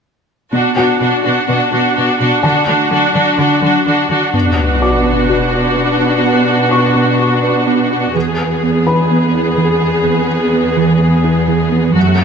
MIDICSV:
0, 0, Header, 1, 6, 480
1, 0, Start_track
1, 0, Tempo, 476190
1, 531, Time_signature, 4, 2, 24, 8
1, 12341, End_track
2, 0, Start_track
2, 0, Title_t, "Felt piano"
2, 0, Program_c, 0, 0
2, 730, Control_c, 0, 64, 127
2, 772, Note_on_c, 0, 66, 18
2, 775, Note_on_c, 0, 78, 17
2, 2172, Note_off_c, 0, 66, 0
2, 2173, Note_off_c, 0, 78, 0
2, 2451, Note_on_c, 0, 81, 38
2, 2472, Control_c, 0, 64, 0
2, 2638, Control_c, 0, 64, 127
2, 3851, Note_off_c, 0, 81, 0
2, 4393, Control_c, 0, 64, 0
2, 4534, Control_c, 0, 64, 127
2, 4856, Note_on_c, 0, 74, 24
2, 4859, Note_on_c, 0, 86, 26
2, 6253, Note_off_c, 0, 74, 0
2, 6255, Note_off_c, 0, 86, 0
2, 6767, Note_on_c, 0, 85, 36
2, 8169, Note_off_c, 0, 85, 0
2, 8232, Control_c, 0, 64, 0
2, 8394, Control_c, 0, 64, 127
2, 8937, Note_on_c, 0, 71, 28
2, 8938, Note_on_c, 0, 83, 35
2, 10334, Note_off_c, 0, 71, 0
2, 10334, Note_off_c, 0, 83, 0
2, 12069, Control_c, 0, 64, 0
2, 12222, Control_c, 0, 64, 127
2, 12341, End_track
3, 0, Start_track
3, 0, Title_t, "Viola section"
3, 0, Program_c, 1, 48
3, 527, Note_on_c, 1, 62, 29
3, 528, Note_on_c, 1, 66, 28
3, 753, Note_off_c, 1, 62, 0
3, 755, Note_off_c, 1, 66, 0
3, 766, Note_on_c, 1, 62, 30
3, 768, Note_on_c, 1, 66, 28
3, 990, Note_off_c, 1, 62, 0
3, 992, Note_off_c, 1, 66, 0
3, 1002, Note_on_c, 1, 62, 30
3, 1004, Note_on_c, 1, 66, 26
3, 1229, Note_off_c, 1, 66, 0
3, 1230, Note_off_c, 1, 62, 0
3, 1241, Note_on_c, 1, 66, 30
3, 1242, Note_on_c, 1, 62, 27
3, 1476, Note_off_c, 1, 62, 0
3, 1478, Note_off_c, 1, 66, 0
3, 1488, Note_on_c, 1, 62, 32
3, 1490, Note_on_c, 1, 66, 30
3, 1721, Note_off_c, 1, 62, 0
3, 1726, Note_off_c, 1, 66, 0
3, 1733, Note_on_c, 1, 62, 34
3, 1736, Note_on_c, 1, 66, 30
3, 1960, Note_off_c, 1, 62, 0
3, 1962, Note_off_c, 1, 66, 0
3, 1972, Note_on_c, 1, 62, 33
3, 1974, Note_on_c, 1, 66, 33
3, 2196, Note_off_c, 1, 66, 0
3, 2200, Note_off_c, 1, 62, 0
3, 2209, Note_on_c, 1, 66, 36
3, 2213, Note_on_c, 1, 62, 37
3, 2440, Note_off_c, 1, 62, 0
3, 2443, Note_off_c, 1, 66, 0
3, 2452, Note_on_c, 1, 62, 39
3, 2455, Note_on_c, 1, 66, 37
3, 2676, Note_off_c, 1, 66, 0
3, 2678, Note_off_c, 1, 62, 0
3, 2689, Note_on_c, 1, 66, 39
3, 2690, Note_on_c, 1, 62, 39
3, 2925, Note_off_c, 1, 66, 0
3, 2926, Note_off_c, 1, 62, 0
3, 2938, Note_on_c, 1, 62, 42
3, 2940, Note_on_c, 1, 66, 40
3, 3158, Note_off_c, 1, 66, 0
3, 3161, Note_off_c, 1, 62, 0
3, 3170, Note_on_c, 1, 66, 39
3, 3173, Note_on_c, 1, 62, 42
3, 3403, Note_off_c, 1, 62, 0
3, 3403, Note_off_c, 1, 66, 0
3, 3415, Note_on_c, 1, 62, 43
3, 3415, Note_on_c, 1, 66, 41
3, 3648, Note_off_c, 1, 62, 0
3, 3649, Note_off_c, 1, 66, 0
3, 3662, Note_on_c, 1, 62, 36
3, 3666, Note_on_c, 1, 66, 35
3, 3881, Note_off_c, 1, 62, 0
3, 3885, Note_off_c, 1, 66, 0
3, 3893, Note_on_c, 1, 62, 32
3, 3898, Note_on_c, 1, 66, 33
3, 4124, Note_off_c, 1, 66, 0
3, 4128, Note_off_c, 1, 62, 0
3, 4136, Note_on_c, 1, 66, 33
3, 4138, Note_on_c, 1, 62, 29
3, 4359, Note_off_c, 1, 62, 0
3, 4361, Note_off_c, 1, 66, 0
3, 4371, Note_on_c, 1, 62, 33
3, 4374, Note_on_c, 1, 66, 37
3, 8171, Note_off_c, 1, 62, 0
3, 8172, Note_off_c, 1, 66, 0
3, 8213, Note_on_c, 1, 59, 39
3, 8215, Note_on_c, 1, 68, 38
3, 12012, Note_off_c, 1, 59, 0
3, 12013, Note_off_c, 1, 68, 0
3, 12052, Note_on_c, 1, 57, 46
3, 12052, Note_on_c, 1, 66, 47
3, 12341, Note_off_c, 1, 57, 0
3, 12341, Note_off_c, 1, 66, 0
3, 12341, End_track
4, 0, Start_track
4, 0, Title_t, "Synth pluck"
4, 0, Program_c, 2, 84
4, 533, Note_on_c, 2, 59, 54
4, 676, Note_off_c, 2, 59, 0
4, 771, Note_on_c, 2, 66, 43
4, 915, Note_off_c, 2, 66, 0
4, 1011, Note_on_c, 2, 62, 45
4, 1155, Note_off_c, 2, 62, 0
4, 1255, Note_on_c, 2, 62, 45
4, 1398, Note_off_c, 2, 62, 0
4, 1491, Note_on_c, 2, 59, 60
4, 1635, Note_off_c, 2, 59, 0
4, 1736, Note_on_c, 2, 62, 46
4, 1879, Note_off_c, 2, 62, 0
4, 2457, Note_on_c, 2, 50, 65
4, 2600, Note_off_c, 2, 50, 0
4, 2693, Note_on_c, 2, 57, 50
4, 2837, Note_off_c, 2, 57, 0
4, 2931, Note_on_c, 2, 54, 43
4, 3075, Note_off_c, 2, 54, 0
4, 3173, Note_on_c, 2, 54, 50
4, 3316, Note_off_c, 2, 54, 0
4, 3412, Note_on_c, 2, 50, 60
4, 3556, Note_off_c, 2, 50, 0
4, 3652, Note_on_c, 2, 54, 46
4, 3796, Note_off_c, 2, 54, 0
4, 4376, Note_on_c, 2, 59, 64
4, 4518, Note_off_c, 2, 59, 0
4, 4860, Note_on_c, 2, 66, 49
4, 5001, Note_off_c, 2, 66, 0
4, 5099, Note_on_c, 2, 59, 59
4, 5241, Note_off_c, 2, 59, 0
4, 5339, Note_on_c, 2, 66, 46
4, 5481, Note_off_c, 2, 66, 0
4, 5576, Note_on_c, 2, 71, 43
4, 5719, Note_off_c, 2, 71, 0
4, 5817, Note_on_c, 2, 59, 62
4, 5959, Note_off_c, 2, 59, 0
4, 6060, Note_on_c, 2, 66, 51
4, 6202, Note_off_c, 2, 66, 0
4, 6293, Note_on_c, 2, 59, 62
4, 6436, Note_off_c, 2, 59, 0
4, 6773, Note_on_c, 2, 66, 47
4, 6917, Note_off_c, 2, 66, 0
4, 7011, Note_on_c, 2, 59, 58
4, 7155, Note_off_c, 2, 59, 0
4, 7252, Note_on_c, 2, 66, 44
4, 7396, Note_off_c, 2, 66, 0
4, 7494, Note_on_c, 2, 71, 46
4, 7637, Note_off_c, 2, 71, 0
4, 7732, Note_on_c, 2, 59, 64
4, 7876, Note_off_c, 2, 59, 0
4, 7977, Note_on_c, 2, 66, 52
4, 8119, Note_off_c, 2, 66, 0
4, 8220, Note_on_c, 2, 52, 62
4, 8361, Note_off_c, 2, 52, 0
4, 8703, Note_on_c, 2, 59, 42
4, 8843, Note_off_c, 2, 59, 0
4, 8937, Note_on_c, 2, 52, 67
4, 9079, Note_off_c, 2, 52, 0
4, 9182, Note_on_c, 2, 59, 47
4, 9323, Note_off_c, 2, 59, 0
4, 9419, Note_on_c, 2, 64, 45
4, 9561, Note_off_c, 2, 64, 0
4, 9654, Note_on_c, 2, 52, 67
4, 9797, Note_off_c, 2, 52, 0
4, 9898, Note_on_c, 2, 59, 47
4, 10040, Note_off_c, 2, 59, 0
4, 10129, Note_on_c, 2, 52, 65
4, 10273, Note_off_c, 2, 52, 0
4, 10614, Note_on_c, 2, 59, 48
4, 10757, Note_off_c, 2, 59, 0
4, 10854, Note_on_c, 2, 52, 73
4, 10998, Note_off_c, 2, 52, 0
4, 11093, Note_on_c, 2, 59, 48
4, 11237, Note_off_c, 2, 59, 0
4, 11334, Note_on_c, 2, 64, 49
4, 11477, Note_off_c, 2, 64, 0
4, 11570, Note_on_c, 2, 52, 65
4, 11715, Note_off_c, 2, 52, 0
4, 11814, Note_on_c, 2, 59, 50
4, 11958, Note_off_c, 2, 59, 0
4, 12057, Note_on_c, 2, 54, 62
4, 12199, Note_off_c, 2, 54, 0
4, 12341, End_track
5, 0, Start_track
5, 0, Title_t, "Cello section"
5, 0, Program_c, 3, 48
5, 532, Note_on_c, 3, 47, 32
5, 613, Note_off_c, 3, 47, 0
5, 774, Note_on_c, 3, 47, 28
5, 854, Note_off_c, 3, 47, 0
5, 1017, Note_on_c, 3, 47, 33
5, 1098, Note_off_c, 3, 47, 0
5, 1256, Note_on_c, 3, 47, 30
5, 1337, Note_off_c, 3, 47, 0
5, 1497, Note_on_c, 3, 47, 33
5, 1578, Note_off_c, 3, 47, 0
5, 1737, Note_on_c, 3, 47, 35
5, 1818, Note_off_c, 3, 47, 0
5, 1980, Note_on_c, 3, 47, 37
5, 2061, Note_off_c, 3, 47, 0
5, 2220, Note_on_c, 3, 47, 37
5, 2300, Note_off_c, 3, 47, 0
5, 2456, Note_on_c, 3, 50, 45
5, 2537, Note_off_c, 3, 50, 0
5, 2695, Note_on_c, 3, 50, 42
5, 2776, Note_off_c, 3, 50, 0
5, 2930, Note_on_c, 3, 50, 42
5, 3011, Note_off_c, 3, 50, 0
5, 3168, Note_on_c, 3, 50, 41
5, 3248, Note_off_c, 3, 50, 0
5, 3405, Note_on_c, 3, 50, 43
5, 3486, Note_off_c, 3, 50, 0
5, 3645, Note_on_c, 3, 50, 37
5, 3725, Note_off_c, 3, 50, 0
5, 3887, Note_on_c, 3, 50, 38
5, 3968, Note_off_c, 3, 50, 0
5, 4136, Note_on_c, 3, 50, 33
5, 4216, Note_off_c, 3, 50, 0
5, 4374, Note_on_c, 3, 47, 36
5, 8172, Note_off_c, 3, 47, 0
5, 8214, Note_on_c, 3, 40, 45
5, 12012, Note_off_c, 3, 40, 0
5, 12053, Note_on_c, 3, 42, 51
5, 12341, Note_off_c, 3, 42, 0
5, 12341, End_track
6, 0, Start_track
6, 0, Title_t, "Sub drop"
6, 0, Program_c, 4, 103
6, 4372, Note_on_c, 4, 60, 34
6, 6292, Note_off_c, 4, 60, 0
6, 12341, End_track
0, 0, End_of_file